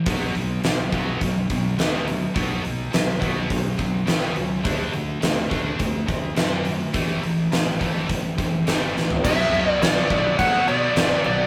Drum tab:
CC |----------------|----------------|----------------|----------------|
HH |o-o-o-o-o-o-o-o-|o-o-o-o-o-o-o-o-|o-o-o-o-o-o-o-o-|o-o-o-o-o-o-o---|
SD |----o-------o---|----o-------o---|----o-------o---|----o-------o-o-|
FT |----------------|----------------|----------------|---------------o|
BD |o-----o-o-o-----|o-----o-o-o-----|o-----o-o-o-----|o-----o-o-o-----|

CC |x-x-x-x-x-x-x-x-|
HH |----------------|
SD |----o-------o---|
FT |----------------|
BD |o-----o-o-------|